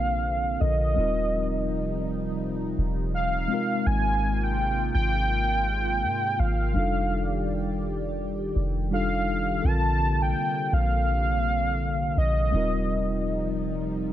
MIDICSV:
0, 0, Header, 1, 5, 480
1, 0, Start_track
1, 0, Key_signature, -2, "major"
1, 0, Tempo, 722892
1, 642, Time_signature, 4, 2, 24, 8
1, 9382, End_track
2, 0, Start_track
2, 0, Title_t, "Soft synth lead"
2, 0, Program_c, 0, 80
2, 0, Note_on_c, 0, 77, 107
2, 403, Note_on_c, 0, 75, 96
2, 413, Note_off_c, 0, 77, 0
2, 1363, Note_off_c, 0, 75, 0
2, 2086, Note_on_c, 0, 77, 105
2, 2566, Note_on_c, 0, 80, 115
2, 2576, Note_off_c, 0, 77, 0
2, 2945, Note_on_c, 0, 79, 107
2, 2954, Note_off_c, 0, 80, 0
2, 3279, Note_off_c, 0, 79, 0
2, 3283, Note_on_c, 0, 79, 115
2, 4246, Note_on_c, 0, 77, 97
2, 4256, Note_off_c, 0, 79, 0
2, 5204, Note_off_c, 0, 77, 0
2, 5930, Note_on_c, 0, 77, 104
2, 6405, Note_on_c, 0, 81, 117
2, 6415, Note_off_c, 0, 77, 0
2, 6787, Note_on_c, 0, 79, 105
2, 6797, Note_off_c, 0, 81, 0
2, 7128, Note_on_c, 0, 77, 106
2, 7138, Note_off_c, 0, 79, 0
2, 8085, Note_off_c, 0, 77, 0
2, 8089, Note_on_c, 0, 75, 92
2, 9019, Note_off_c, 0, 75, 0
2, 9382, End_track
3, 0, Start_track
3, 0, Title_t, "Tine electric piano"
3, 0, Program_c, 1, 4
3, 0, Control_c, 1, 64, 127
3, 0, Note_on_c, 1, 60, 56
3, 0, Note_on_c, 1, 62, 58
3, 0, Note_on_c, 1, 65, 58
3, 0, Note_on_c, 1, 69, 61
3, 0, Note_on_c, 1, 70, 72
3, 368, Note_off_c, 1, 69, 0
3, 373, Note_off_c, 1, 60, 0
3, 384, Note_off_c, 1, 65, 0
3, 389, Note_off_c, 1, 70, 0
3, 398, Note_on_c, 1, 69, 45
3, 400, Note_off_c, 1, 62, 0
3, 403, Note_on_c, 1, 60, 45
3, 408, Note_on_c, 1, 50, 44
3, 414, Note_on_c, 1, 65, 43
3, 419, Note_on_c, 1, 70, 57
3, 629, Note_on_c, 1, 55, 62
3, 630, Note_off_c, 1, 60, 0
3, 638, Note_on_c, 1, 60, 57
3, 640, Note_off_c, 1, 69, 0
3, 645, Note_off_c, 1, 50, 0
3, 648, Note_off_c, 1, 65, 0
3, 649, Note_on_c, 1, 63, 57
3, 650, Note_off_c, 1, 70, 0
3, 652, Control_c, 1, 64, 0
3, 658, Note_on_c, 1, 65, 58
3, 669, Note_on_c, 1, 70, 69
3, 767, Control_c, 1, 64, 127
3, 2289, Note_off_c, 1, 55, 0
3, 2294, Note_off_c, 1, 60, 0
3, 2299, Note_off_c, 1, 63, 0
3, 2304, Note_off_c, 1, 65, 0
3, 2308, Note_on_c, 1, 56, 65
3, 2309, Note_off_c, 1, 70, 0
3, 2318, Note_on_c, 1, 60, 55
3, 2329, Note_on_c, 1, 63, 59
3, 2331, Control_c, 1, 64, 0
3, 2339, Note_on_c, 1, 65, 58
3, 2349, Note_on_c, 1, 70, 71
3, 2463, Control_c, 1, 64, 127
3, 4208, Note_off_c, 1, 56, 0
3, 4214, Note_off_c, 1, 60, 0
3, 4219, Note_off_c, 1, 63, 0
3, 4224, Note_off_c, 1, 65, 0
3, 4229, Note_off_c, 1, 70, 0
3, 4469, Note_on_c, 1, 55, 63
3, 4480, Note_on_c, 1, 62, 60
3, 4489, Note_on_c, 1, 63, 58
3, 4492, Control_c, 1, 64, 0
3, 4500, Note_on_c, 1, 65, 59
3, 4510, Note_on_c, 1, 69, 69
3, 4591, Control_c, 1, 64, 127
3, 5889, Note_off_c, 1, 55, 0
3, 5895, Note_off_c, 1, 62, 0
3, 5899, Note_off_c, 1, 63, 0
3, 5905, Note_off_c, 1, 65, 0
3, 5909, Note_off_c, 1, 69, 0
3, 5916, Note_on_c, 1, 55, 60
3, 5922, Note_on_c, 1, 62, 57
3, 5928, Note_on_c, 1, 63, 55
3, 5930, Control_c, 1, 64, 0
3, 5932, Note_on_c, 1, 65, 57
3, 5936, Note_on_c, 1, 69, 71
3, 6046, Control_c, 1, 64, 127
3, 6380, Note_off_c, 1, 69, 0
3, 6388, Note_on_c, 1, 69, 65
3, 6399, Note_off_c, 1, 55, 0
3, 6399, Note_on_c, 1, 60, 59
3, 6402, Note_off_c, 1, 62, 0
3, 6405, Note_off_c, 1, 63, 0
3, 6407, Note_off_c, 1, 65, 0
3, 6408, Note_on_c, 1, 50, 57
3, 6411, Control_c, 1, 64, 0
3, 6418, Note_on_c, 1, 65, 61
3, 6429, Note_on_c, 1, 70, 71
3, 6531, Control_c, 1, 64, 127
3, 8289, Note_off_c, 1, 69, 0
3, 8294, Note_off_c, 1, 60, 0
3, 8299, Note_off_c, 1, 50, 0
3, 8304, Note_off_c, 1, 65, 0
3, 8306, Note_on_c, 1, 55, 64
3, 8309, Note_off_c, 1, 70, 0
3, 8316, Note_on_c, 1, 60, 58
3, 8326, Note_on_c, 1, 63, 59
3, 8330, Control_c, 1, 64, 0
3, 8336, Note_on_c, 1, 65, 58
3, 8346, Note_on_c, 1, 70, 69
3, 8459, Control_c, 1, 64, 127
3, 9382, Note_off_c, 1, 55, 0
3, 9382, Note_off_c, 1, 60, 0
3, 9382, Note_off_c, 1, 63, 0
3, 9382, Note_off_c, 1, 65, 0
3, 9382, Note_off_c, 1, 70, 0
3, 9382, End_track
4, 0, Start_track
4, 0, Title_t, "Analog synth pad"
4, 0, Program_c, 2, 89
4, 0, Note_on_c, 2, 48, 81
4, 0, Note_on_c, 2, 50, 84
4, 0, Note_on_c, 2, 58, 74
4, 0, Note_on_c, 2, 60, 74
4, 623, Note_off_c, 2, 50, 0
4, 623, Note_off_c, 2, 58, 0
4, 623, Note_off_c, 2, 60, 0
4, 642, Note_on_c, 2, 53, 72
4, 643, Note_on_c, 2, 63, 87
4, 644, Note_on_c, 2, 55, 76
4, 2305, Note_off_c, 2, 53, 0
4, 2306, Note_off_c, 2, 55, 0
4, 2306, Note_off_c, 2, 63, 0
4, 2325, Note_on_c, 2, 58, 74
4, 2326, Note_on_c, 2, 65, 90
4, 2327, Note_on_c, 2, 56, 73
4, 4456, Note_off_c, 2, 48, 0
4, 4462, Note_off_c, 2, 58, 0
4, 4462, Note_off_c, 2, 65, 0
4, 4463, Note_off_c, 2, 56, 0
4, 4484, Note_on_c, 2, 74, 73
4, 4485, Note_on_c, 2, 67, 92
4, 4486, Note_on_c, 2, 51, 80
4, 4486, Note_on_c, 2, 55, 75
4, 6384, Note_off_c, 2, 67, 0
4, 6384, Note_off_c, 2, 74, 0
4, 6385, Note_off_c, 2, 51, 0
4, 6401, Note_on_c, 2, 48, 81
4, 6402, Note_on_c, 2, 50, 93
4, 6404, Note_on_c, 2, 58, 74
4, 8298, Note_off_c, 2, 55, 0
4, 8303, Note_off_c, 2, 48, 0
4, 8303, Note_off_c, 2, 50, 0
4, 8304, Note_off_c, 2, 58, 0
4, 8320, Note_on_c, 2, 53, 78
4, 8321, Note_on_c, 2, 48, 82
4, 8321, Note_on_c, 2, 63, 88
4, 8322, Note_on_c, 2, 55, 74
4, 9382, Note_off_c, 2, 48, 0
4, 9382, Note_off_c, 2, 53, 0
4, 9382, Note_off_c, 2, 55, 0
4, 9382, Note_off_c, 2, 63, 0
4, 9382, End_track
5, 0, Start_track
5, 0, Title_t, "808-style bass"
5, 0, Program_c, 3, 38
5, 0, Note_on_c, 3, 34, 98
5, 377, Note_off_c, 3, 34, 0
5, 405, Note_on_c, 3, 34, 107
5, 634, Note_off_c, 3, 34, 0
5, 646, Note_on_c, 3, 27, 109
5, 1818, Note_off_c, 3, 27, 0
5, 1846, Note_on_c, 3, 27, 102
5, 2305, Note_off_c, 3, 27, 0
5, 2566, Note_on_c, 3, 32, 108
5, 3257, Note_off_c, 3, 32, 0
5, 3285, Note_on_c, 3, 32, 103
5, 4006, Note_on_c, 3, 44, 91
5, 4016, Note_off_c, 3, 32, 0
5, 4232, Note_off_c, 3, 44, 0
5, 4245, Note_on_c, 3, 32, 107
5, 4474, Note_off_c, 3, 32, 0
5, 4484, Note_on_c, 3, 29, 109
5, 5657, Note_off_c, 3, 29, 0
5, 5683, Note_on_c, 3, 29, 102
5, 6376, Note_off_c, 3, 29, 0
5, 6403, Note_on_c, 3, 34, 110
5, 6863, Note_off_c, 3, 34, 0
5, 7122, Note_on_c, 3, 34, 97
5, 8056, Note_off_c, 3, 34, 0
5, 8082, Note_on_c, 3, 34, 110
5, 8312, Note_off_c, 3, 34, 0
5, 8322, Note_on_c, 3, 27, 117
5, 9382, Note_off_c, 3, 27, 0
5, 9382, End_track
0, 0, End_of_file